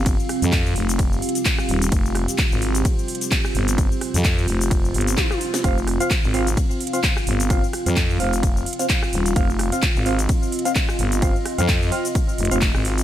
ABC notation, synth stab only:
X:1
M:4/4
L:1/16
Q:"Swing 16ths" 1/4=129
K:Cphr
V:1 name="Synth stab"
z16 | z16 | z16 | [CFf] z2 [CFf] z2 [CFf] z4 [CFf] z4 |
[CFf] z2 [CFf] z2 [CFf] z4 [CFf] z4 | [CFf] z2 [CFf] z2 [CFf] z4 [CFf] z4 | [CFf] z2 [CFf] z2 [CFf] z4 [CFf] z4 |]